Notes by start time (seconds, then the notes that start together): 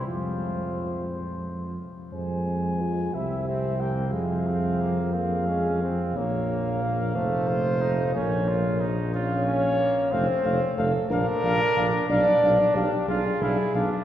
0.06 F2 F3 G#3 F4 C5
2.13 F2 G#3 C5 G#5
2.81 F4
3.13 C2 C4 E4 G4 E5
3.47 C4 E5
3.80 A#3 G5
4.13 F2 G#3 C4 G#4 F5
4.47 C4
4.81 A#3
5.14 A#3 C4 G#4 F5
5.48 G#3 C#4
5.82 C4
6.16 A#1 A#3 C#5 F5
6.83 A#4
7.15 F1 A3 C5
7.48 F4
7.81 D#4
8.15 A#1 A#3 C#4 C#5
8.48 F4
8.81 D#4
9.13 C#4 F4 C#5 F5
9.46 C#4
9.79 A#3
10.11 F1 A3 C4 C5 F5
10.44 F1 A3 F5
10.77 F1 A3 A4 F5
11.10 A#1 D4 A#4 F5
11.43 A#1 D4 F5
11.76 A#1 D4 F5
12.09 B1 D4 D5 F5
12.42 B1 D4 F5
12.74 B1 D4 G4 F5
13.08 B1 D4 F4 G#4 F5
13.41 B1 D4 E4 F5
13.74 B1 D4 F5